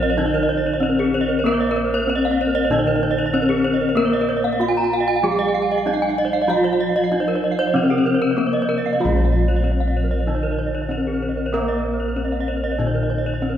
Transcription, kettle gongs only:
Already playing: A#1 F4
0.82 C4
1.45 A#4
2.09 C4
2.70 A#2
3.34 C4
3.97 A#4
4.61 C4
5.23 F3
5.87 C4
6.48 F4
7.12 C4
7.76 F3
8.38 C4
9.00 F4
9.05 A#1
9.63 C4
10.90 C4
11.54 A#4
12.16 C4
12.80 A#2
13.42 C4

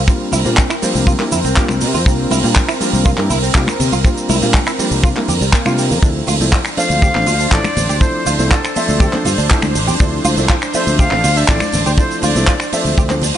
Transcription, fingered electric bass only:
0.33 C2
0.46 A#2
0.83 muted fingered electric bass stroke
0.95 C2
1.32 F2
1.45 C2
1.69 C2
1.81 C3
1.94 F2
2.06 C2
2.31 C2
2.44 A#2
2.81 muted fingered electric bass stroke
2.93 C2
3.18 G2
3.30 C2
3.55 C3
3.80 C3
3.92 C2
4.29 C2
4.42 A#2
4.79 muted fingered electric bass stroke
4.91 C2
5.28 F2
5.41 C2
5.66 C3
5.91 F2
6.03 D2
6.28 D2
6.40 C2
6.77 muted fingered electric bass stroke
6.90 D2
7.15 A1
7.27 D2
7.52 A1
7.77 A1
7.89 D2
8.26 D2
8.39 C2
8.76 muted fingered electric bass stroke
8.89 D2
9.26 G2
9.38 D2
9.63 D2
9.75 A1
9.88 F2
10.00 D2
10.25 D2
10.37 C2
10.74 muted fingered electric bass stroke
10.87 D2
11.12 A1
11.24 D2
11.49 A1
11.73 A1
11.86 D2
12.23 D2
12.36 C2
12.72 muted fingered electric bass stroke
12.85 D2
12.98 D2

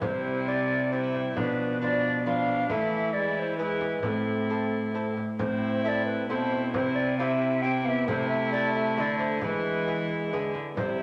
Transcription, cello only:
0.02 C3
1.37 B2
2.71 E3
4.03 A2
5.39 A2
6.29 B2
6.74 C3
8.07 C3
8.97 D3
9.42 E3
10.32 D3
10.78 C3

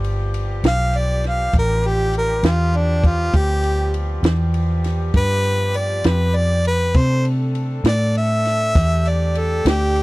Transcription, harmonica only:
0.68 F5
0.98 D5
1.28 F5
1.59 A#4
1.88 G4
2.18 A#4
2.48 F4
2.77 D4
3.07 F4
3.37 G4
5.17 B4
5.77 D5
6.08 B4
6.37 D5
6.67 B4
6.98 C5
7.88 D5
8.18 E5
9.09 D5
9.39 A4
9.69 G4

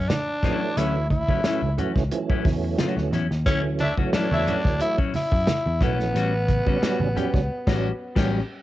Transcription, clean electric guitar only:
0.10 muted clean electric guitar stroke
0.28 muted clean electric guitar stroke
0.44 F#3 C#4 E4
0.62 muted clean electric guitar stroke
0.77 F#3 C#4 E4
1.12 muted clean electric guitar stroke
1.29 F#3 C#4 E4
1.45 F#3 C#4 E4
1.63 muted clean electric guitar stroke
1.78 F#3 C#4 F#4
1.97 muted clean electric guitar stroke
2.13 muted clean electric guitar stroke
2.30 F#3 C#4 E4
2.46 muted clean electric guitar stroke
2.64 muted clean electric guitar stroke
2.79 F#3 C#4 F#4
2.97 muted clean electric guitar stroke
3.13 F#3 C#4 E4
3.31 muted clean electric guitar stroke
3.47 F#3 C#4 E4
3.80 muted clean electric guitar stroke
3.98 F#3 C#4 F#4
4.13 F#3 C#4 E4
4.30 muted clean electric guitar stroke
4.46 F#3 C#4 F#4
4.65 muted clean electric guitar stroke
4.80 muted clean electric guitar stroke
4.98 F#3 C#4 E4
5.15 muted clean electric guitar stroke
5.32 muted clean electric guitar stroke
5.48 muted clean electric guitar stroke
5.66 muted clean electric guitar stroke
5.81 F#3 C#4 E4
6.00 muted clean electric guitar stroke
6.15 G3 C#4 F#4
6.49 muted clean electric guitar stroke
6.66 G3 C#4 F#4
6.81 G3 C#4 F#4
7.01 muted clean electric guitar stroke
7.15 G3 C#4 G4
7.35 muted clean electric guitar stroke
7.67 G3 C#4 F#4
8.16 G3 C#4 G4

